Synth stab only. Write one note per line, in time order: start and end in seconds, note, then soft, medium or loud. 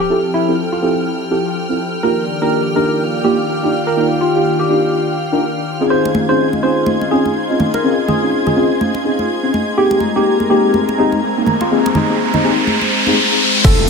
0.09 0.45 C4 medium
0.09 0.45 E4 medium
0.09 0.45 F4 medium
0.09 0.45 G4 medium
0.09 0.45 A4 loud
0.48 0.80 C4 medium
0.48 0.80 E4 medium
0.48 0.80 F4 medium
0.48 0.80 G4 medium
0.48 0.80 A4 medium
0.82 1.28 C4 medium
0.82 1.28 E4 medium
0.82 1.28 F4 medium
0.82 1.28 G4 medium
0.82 1.28 A4 loud
1.30 1.44 C4 medium
1.30 1.44 E4 medium
1.30 1.44 F4 medium
1.30 1.44 G4 medium
1.30 1.44 A4 loud
1.69 1.78 C4 medium
1.69 1.78 E4 medium
1.69 1.78 F4 medium
1.69 1.78 G4 medium
1.69 1.78 A4 medium
2.03 2.38 A#3 medium
2.03 2.38 D4 medium
2.03 2.38 D#4 medium
2.03 2.39 F4 medium
2.03 2.39 G4 medium
2.41 2.73 A#3 medium
2.41 2.73 D4 medium
2.41 2.74 D#4 medium
2.41 2.74 F4 medium
2.41 2.74 G4 medium
2.75 3.22 A#3 medium
2.75 3.22 D4 medium
2.75 3.22 D#4 medium
2.75 3.22 F4 medium
2.75 3.22 G4 loud
3.24 3.37 A#3 medium
3.24 3.37 D4 medium
3.24 3.37 D#4 medium
3.24 3.37 F4 medium
3.24 3.37 G4 medium
3.62 3.71 A#3 medium
3.62 3.72 D4 medium
3.62 3.72 D#4 medium
3.62 3.72 F4 medium
3.62 3.72 G4 medium
3.96 4.32 A#3 medium
3.96 4.32 D4 medium
3.96 4.32 D#4 medium
3.96 4.32 F4 medium
3.96 4.32 G4 medium
4.35 4.67 A#3 medium
4.35 4.67 D4 medium
4.35 4.67 D#4 medium
4.35 4.67 F4 medium
4.35 4.67 G4 medium
4.69 5.15 A#3 medium
4.69 5.15 D4 medium
4.69 5.15 D#4 medium
4.69 5.16 F4 medium
4.69 5.16 G4 loud
5.32 5.41 A#3 medium
5.32 5.41 D4 medium
5.32 5.41 D#4 medium
5.32 5.41 F4 medium
5.32 5.41 A#4 medium
5.80 5.89 C4 medium
5.80 5.89 C#4 medium
5.80 5.89 D#4 medium
5.80 5.89 F4 medium
5.80 5.89 G#4 loud
5.90 6.25 C4 medium
5.90 6.25 C#4 medium
5.90 6.25 D#4 medium
5.90 6.26 F4 medium
5.90 6.26 G#4 medium
6.29 6.60 C4 medium
6.29 6.61 C#4 medium
6.29 6.61 D#4 medium
6.29 6.61 F4 medium
6.29 6.61 G#4 medium
6.62 7.09 C4 medium
6.62 7.09 C#4 medium
6.62 7.09 D#4 medium
6.62 7.09 F4 medium
6.62 7.09 G#4 loud
7.11 7.24 C4 medium
7.11 7.24 C#4 medium
7.11 7.24 D#4 medium
7.11 7.24 F4 medium
7.11 7.24 G#4 loud
7.50 7.59 C4 medium
7.50 7.59 C#4 medium
7.50 7.59 D#4 medium
7.50 7.59 F4 medium
7.50 7.59 G#4 medium
7.84 8.19 C4 medium
7.84 8.19 C#4 medium
7.84 8.19 D#4 medium
7.84 8.19 F4 medium
7.84 8.19 G#4 medium
8.22 8.54 C4 medium
8.22 8.54 C#4 medium
8.22 8.54 D#4 medium
8.22 8.54 F4 medium
8.22 8.54 G#4 medium
8.56 9.02 C4 medium
8.56 9.02 C#4 medium
8.56 9.03 D#4 medium
8.56 9.03 F4 medium
8.56 9.03 G#4 loud
9.05 9.18 C4 medium
9.05 9.18 C#4 medium
9.05 9.18 D#4 medium
9.05 9.18 F4 medium
9.05 9.18 G#4 loud
9.43 9.52 C4 medium
9.43 9.52 C#4 medium
9.43 9.52 D#4 medium
9.43 9.52 F4 medium
9.43 9.53 G#4 medium
9.77 10.12 A#3 medium
9.77 10.12 C4 medium
9.77 10.13 D#4 medium
9.77 10.13 G4 medium
9.77 10.13 G#4 loud
10.16 10.47 A#3 medium
10.16 10.48 C4 medium
10.16 10.48 D#4 medium
10.16 10.48 G4 medium
10.16 10.48 G#4 medium
10.50 10.96 A#3 medium
10.50 10.96 C4 medium
10.50 10.96 D#4 medium
10.50 10.96 G4 medium
10.50 10.96 G#4 loud
10.98 11.11 A#3 medium
10.98 11.11 C4 medium
10.98 11.11 D#4 medium
10.98 11.11 G4 medium
10.98 11.12 G#4 loud
11.37 11.46 A#3 medium
11.37 11.46 C4 medium
11.37 11.46 D#4 medium
11.37 11.46 G4 medium
11.37 11.46 G#4 medium
11.71 12.06 A#3 medium
11.71 12.06 C4 medium
11.71 12.06 D#4 medium
11.71 12.06 G4 medium
11.71 12.06 G#4 loud
12.09 12.41 A#3 medium
12.09 12.41 C4 medium
12.09 12.41 D#4 medium
12.09 12.41 G4 medium
12.09 12.41 G#4 medium
12.43 12.89 A#3 medium
12.43 12.90 C4 medium
12.43 12.90 D#4 medium
12.43 12.90 G4 medium
12.43 12.90 G#4 loud
13.06 13.15 A#3 medium
13.06 13.15 C4 medium
13.06 13.15 D#4 medium
13.06 13.15 G4 medium
13.06 13.15 G#4 medium
13.64 13.89 A3 medium
13.64 13.89 C4 medium
13.64 13.89 E4 medium
13.64 13.89 F4 medium
13.64 13.89 G4 loud